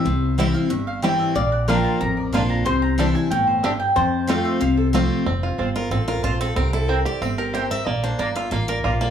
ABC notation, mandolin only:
X:1
M:4/4
L:1/8
Q:1/4=184
K:F
V:1 name="Mandolin"
e2 z f e f g e | f _g =g a b d f b | c' b a _a g c e g | a2 g e f A z2 |
z2 [CFca] z3 [CFca] z | z2 [CEcg] z3 [CEcg] z | z2 [B,Fdb] z3 [B,Fdb] z |]